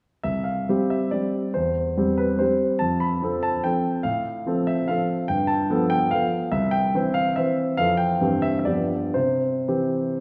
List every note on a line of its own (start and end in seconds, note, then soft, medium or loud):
0.23 0.67 C2 soft
0.23 0.45 E5 medium
0.44 0.90 F5 medium
0.69 1.08 G3 soft
0.69 1.09 C4 soft
0.69 1.09 G4 soft
0.90 1.12 E5 medium
1.11 1.50 G3 soft
1.11 1.50 C4 soft
1.11 1.50 G4 soft
1.11 1.53 D5 medium
1.54 1.97 E2 soft
1.54 2.19 C5 medium
1.97 2.37 G3 soft
1.97 2.37 C4 soft
1.97 2.37 G4 soft
2.18 2.40 B4 medium
2.39 2.77 G3 soft
2.39 2.77 C4 soft
2.39 2.77 G4 soft
2.39 2.80 C5 medium
2.79 3.21 F2 soft
2.79 3.00 A5 medium
3.00 3.44 B5 medium
3.22 3.60 F3 soft
3.22 3.61 C4 soft
3.22 3.61 A4 soft
3.43 3.64 A5 medium
3.64 4.01 F3 soft
3.64 4.01 C4 soft
3.64 4.01 A4 soft
3.64 4.04 G5 medium
4.03 4.44 A2 soft
4.03 4.67 F5 medium
4.46 4.85 F3 soft
4.46 4.85 C4 soft
4.46 4.86 A4 soft
4.67 4.89 E5 medium
4.88 5.25 F3 soft
4.88 5.25 C4 soft
4.88 5.25 A4 soft
4.88 5.28 F5 medium
5.28 5.69 G2 soft
5.28 5.48 G5 medium
5.47 5.90 A5 medium
5.70 6.08 F3 medium
5.70 6.08 B3 medium
5.70 6.08 A4 medium
5.90 6.11 G5 medium
6.11 6.48 F3 soft
6.11 6.48 B3 soft
6.11 6.48 A4 soft
6.11 6.51 F5 medium
6.52 6.92 C2 medium
6.52 6.72 E5 medium
6.71 7.15 G5 medium
6.94 7.34 E3 soft
6.94 7.34 C4 soft
6.94 7.34 C5 medium
7.14 7.36 F5 medium
7.36 7.75 E3 soft
7.36 7.75 C4 soft
7.36 7.75 C5 soft
7.36 7.78 E5 medium
7.77 8.20 F2 medium
7.77 8.17 E3 soft
7.77 8.17 C4 soft
7.77 8.18 A4 soft
7.77 7.98 F5 medium
7.97 8.43 G5 medium
8.21 8.65 G2 medium
8.21 8.63 E3 soft
8.21 8.64 C4 soft
8.21 8.64 G4 soft
8.42 8.58 E5 medium
8.59 8.67 E5 medium
8.65 9.14 G2 soft
8.65 9.12 F3 soft
8.65 9.12 B3 soft
8.65 9.12 G4 soft
8.65 9.15 D5 medium
9.14 9.67 C3 soft
9.14 10.19 C5 medium
9.68 10.16 E3 soft
9.68 10.16 C4 soft
9.68 10.16 G4 soft